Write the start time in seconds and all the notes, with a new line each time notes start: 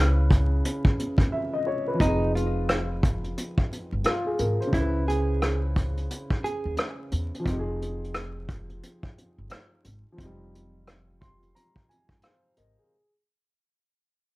Already playing: C#2 C#3 C#4 E4 B4 G#5
0.30 kick, closed hi-hat
0.65 closed hi-hat
0.85 kick
1.00 closed hi-hat
1.18 D#2, kick, closed hi-hat
1.32 E5
1.54 D#5
1.67 C#5
1.88 B4
1.94 F3
1.98 F1 C4 D#4, kick, closed hi-hat
2.03 D#4
2.07 G#4
2.35 F4, closed hi-hat
2.69 cross-stick, closed hi-hat
3.03 kick, closed hi-hat
3.24 closed hi-hat
3.38 closed hi-hat
3.58 kick
3.72 closed hi-hat
3.92 G1
4.04 F4, cross-stick, closed hi-hat
4.26 G#4
4.39 G#1 A#4, closed hi-hat
4.60 C5, closed hi-hat
4.67 C#3
4.71 C#2 C#4 E4, kick, closed hi-hat
4.76 E4
4.80 B4
5.08 G#4, closed hi-hat
5.42 cross-stick, closed hi-hat
5.76 kick, closed hi-hat
5.97 closed hi-hat
6.11 closed hi-hat
6.31 kick
6.44 G#4, closed hi-hat
6.65 D#2
6.77 cross-stick, closed hi-hat
7.12 E2, closed hi-hat
7.34 closed hi-hat
7.40 F3
7.44 F1 C4, kick, closed hi-hat
7.48 D#4
7.52 G4
7.59 G#4
7.82 closed hi-hat
8.04 closed hi-hat
8.15 cross-stick, closed hi-hat
8.49 kick, closed hi-hat
8.70 closed hi-hat
8.83 closed hi-hat
9.03 kick
9.18 closed hi-hat
9.38 G1
9.50 cross-stick, closed hi-hat
9.84 G#1, closed hi-hat
10.12 F3
10.17 F1 C4, kick, closed hi-hat
10.21 D#4
10.25 G3
10.55 closed hi-hat
10.87 cross-stick, closed hi-hat
11.21 C6, kick, closed hi-hat
11.42 closed hi-hat
11.55 A#5, closed hi-hat
11.76 kick
11.89 G#5, closed hi-hat
12.09 G1, kick, closed hi-hat
12.22 C5 F5, cross-stick, closed hi-hat
12.57 G#1 A#4 D#5, closed hi-hat
12.79 G#4